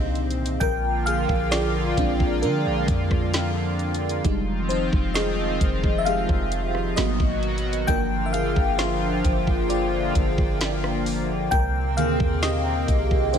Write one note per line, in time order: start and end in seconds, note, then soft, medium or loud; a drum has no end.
0.00 0.58 C2 medium
0.00 0.57 A#2 medium
0.00 0.57 C3 medium
0.00 0.63 D#3 medium
0.00 0.63 A#3 soft
0.00 0.59 C4 medium
0.00 0.63 D4 medium
0.00 0.12 D#4 medium
0.00 0.11 C5 medium
0.15 closed hi-hat soft
0.30 closed hi-hat medium
0.46 closed hi-hat medium
0.60 1.27 A#1 loud
0.60 4.21 D3 medium
0.60 4.21 F3 medium
0.60 4.21 A#3 medium
0.60 4.21 F4 medium
0.60 1.04 A#4 medium
0.60 1.07 G5 loud
0.60 kick loud
0.60 closed hi-hat medium
1.06 1.49 G#4 medium
1.06 1.48 F5 loud
1.06 closed hi-hat medium
1.29 1.95 A#1 loud
1.29 kick loud
1.51 2.39 F4 medium
1.51 2.38 D5 loud
1.51 snare loud
1.51 closed hi-hat medium
1.97 2.45 A#1 loud
1.97 3.30 G#3 medium
1.97 3.30 C4 medium
1.97 2.43 D4 medium
1.97 kick loud
1.97 closed hi-hat medium
2.20 kick medium
2.42 2.68 D3 loud
2.42 3.76 D4 medium
2.42 3.75 A#4 medium
2.42 closed hi-hat medium
2.66 2.87 A#1 loud
2.88 4.21 F2 loud
2.88 kick loud
2.88 closed hi-hat medium
3.11 kick medium
3.11 cross-stick medium
3.34 snare loud
3.34 closed hi-hat medium
3.79 closed hi-hat soft
3.94 closed hi-hat medium
4.09 closed hi-hat medium
4.24 4.90 F1 loud
4.24 6.95 D#3 medium
4.24 6.95 F3 medium
4.24 4.85 G3 medium
4.24 4.85 G#3 medium
4.24 6.95 C4 medium
4.24 4.70 D#4 medium
4.24 6.95 F4 medium
4.24 kick loud
4.24 closed hi-hat medium
4.69 4.85 D#4 medium
4.69 4.83 C5 medium
4.69 closed hi-hat medium
4.93 5.58 F1 loud
4.93 kick loud
5.14 5.96 G#4 medium
5.14 6.01 D#5 medium
5.14 snare loud
5.14 closed hi-hat medium
5.61 6.26 F1 loud
5.61 kick loud
5.61 closed hi-hat medium
5.84 kick medium
5.98 6.06 E5 medium
6.05 6.48 G#3 soft
6.05 6.48 D#4 medium
6.05 6.48 G4 soft
6.05 6.94 G#4 medium
6.05 6.99 F5 loud
6.05 closed hi-hat medium
6.29 6.95 F1 loud
6.29 kick loud
6.52 closed hi-hat medium
6.75 cross-stick medium
6.96 7.19 G#1 loud
6.96 7.87 B2 medium
6.96 7.87 D#3 medium
6.96 7.84 F#3 medium
6.96 7.87 F#3 medium
6.96 7.84 A#3 medium
6.96 7.85 B3 medium
6.96 7.87 F#4 medium
6.96 7.62 F#4 medium
6.96 7.61 D#5 loud
6.96 snare loud
6.96 closed hi-hat medium
7.20 7.85 G#1 loud
7.20 kick loud
7.43 closed hi-hat soft
7.58 closed hi-hat medium
7.73 closed hi-hat medium
7.87 8.54 G1 loud
7.87 11.48 D3 medium
7.87 9.21 F3 medium
7.87 11.48 F3 medium
7.87 13.38 A#3 medium
7.87 9.21 A#3 medium
7.87 9.21 D4 medium
7.87 11.48 F4 medium
7.87 8.25 A#4 medium
7.87 8.27 G5 loud
7.87 kick loud
7.87 closed hi-hat medium
8.26 8.33 E5 medium
8.33 8.77 G#4 medium
8.33 8.75 F5 loud
8.33 closed hi-hat medium
8.56 9.22 G1 loud
8.56 kick loud
8.78 9.67 F4 medium
8.78 9.66 C5 medium
8.78 snare loud
8.78 closed hi-hat medium
9.24 10.12 G1 loud
9.24 kick loud
9.24 closed hi-hat medium
9.47 kick medium
9.69 11.03 F4 medium
9.69 11.02 D5 medium
9.69 closed hi-hat medium
10.15 11.48 G1 loud
10.15 kick loud
10.15 closed hi-hat medium
10.38 kick medium
10.61 snare loud
10.61 closed hi-hat medium
10.84 cross-stick medium
11.06 open hi-hat medium
11.51 12.00 C2 loud
11.51 13.38 A#2 medium
11.51 13.38 C3 medium
11.51 13.32 C4 medium
11.51 11.95 A#4 medium
11.51 11.94 G5 loud
11.51 kick loud
11.51 closed hi-hat medium
11.97 12.19 D2 loud
11.97 13.30 D3 medium
11.97 13.30 D#3 medium
11.97 13.30 A#3 medium
11.97 12.40 G#4 medium
11.97 12.44 F5 loud
11.97 closed hi-hat medium
12.20 12.86 D#2 loud
12.20 kick loud
12.42 13.30 G4 medium
12.42 13.36 D#5 loud
12.42 snare loud
12.42 closed hi-hat medium
12.88 13.36 C2 loud
12.88 kick loud
12.88 closed hi-hat medium
13.11 kick medium
13.33 13.38 A#1 loud
13.33 13.38 D#3 soft
13.33 13.38 A#3 soft
13.33 13.38 C4 loud
13.33 13.38 D4 medium
13.33 13.38 D#4 medium
13.33 13.38 C5 medium
13.33 closed hi-hat medium